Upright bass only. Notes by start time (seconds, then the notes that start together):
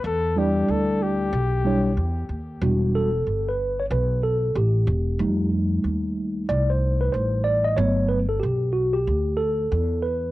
0.04 E2
0.68 D2
1.33 B1
1.97 E2
2.29 D#2
2.61 E1
3.26 G1
3.90 B1
4.55 A1
4.87 E1
5.19 F2
5.84 D#2
6.49 C2
7.14 A1
7.78 G1
8.43 B1
9.07 D2
9.72 E2